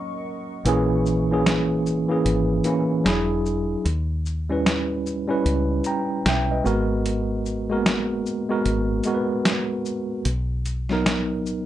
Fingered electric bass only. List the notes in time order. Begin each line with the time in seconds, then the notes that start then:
0.65 A#1
2.25 G#1
3.05 E1
3.85 D#2
5.45 C#2
6.25 B1
6.65 G#1
8.65 G#1
10.25 B1